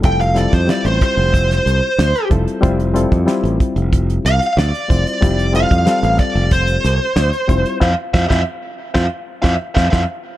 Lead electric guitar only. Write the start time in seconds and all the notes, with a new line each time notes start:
0.05 G5
0.21 F5
0.38 D5
0.54 C5
0.70 D5
0.86 C5
1.03 C5
4.26 F5
4.58 D5
5.56 F5
6.19 D5
6.52 C5
7.82 C5 E5 F5
8.14 C5 E5 F5
8.30 C5 E5 F5
8.94 C5 E5 F5
9.42 C5 E5 F5
9.75 C5 E5 F5
9.90 C5 E5 F5